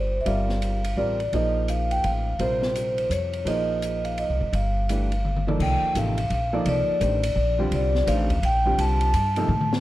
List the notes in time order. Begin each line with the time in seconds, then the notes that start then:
Already playing: G1 G3 C4 F4 A#4 C5 D5
0.21 E5
0.26 G1 G3 C4 F4 A#4 D5 F5, ride
0.49 snare
0.62 hi-hat pedal, ride
0.84 ride
0.97 A1 G3 C4 F4 A#4 D5
1.20 ride
1.33 A#1 F3 A#3 D#4 G#4 C5 D#5, ride
1.68 F5, hi-hat pedal, ride
1.91 G5, ride
2.04 A1 F5, ride
2.39 A#1 C3 G3 F4 A#4 C5, ride
2.62 snare
2.75 hi-hat pedal, ride
2.98 ride
3.10 F2 C#5, hi-hat pedal, ride
3.33 ride
3.45 A#1 F3 A#3 D#4 G#4 C5 D#5, ride
3.82 hi-hat pedal, ride
4.05 F5, ride
4.18 D#5, ride
4.29 C2
4.41 G#1
4.53 G1 F5, ride
4.89 E3 A3 D4 G4 B4, hi-hat pedal, ride
5.12 ride
5.25 mid tom
5.36 mid tom
5.47 F3 A#3 D#4 A4 D5, mid tom
5.60 C2 G5, kick, crash
5.82 muted upright bass stroke
5.95 A1 C3 F3 A#3 D#4 A4 F5, hi-hat pedal, ride
6.18 ride
6.30 A#1, ride
6.34 F5
6.53 F3 A#3 D#4 A4 D5
6.66 C2 D5, ride
6.88 muted upright bass stroke
7.01 A1 D#3 A3 D4 G4 C5, hi-hat pedal, ride
7.23 ride
7.36 A#1
7.59 D3 G3 C4 F4 G4
7.71 C2 D5, ride
7.95 snare
8.07 A1 D#3 A3 D4 G4 C5 F5, hi-hat pedal, ride
8.30 kick, ride
8.42 A#1 G5, ride
8.65 D3 G3 C4 F4 G4
8.78 C2 A5, ride
9.01 ride
9.14 G2, hi-hat pedal, ride
9.36 C3 F3 A#3 D#4 A4, ride
9.48 A2, mid tom
9.61 mid tom
9.73 snare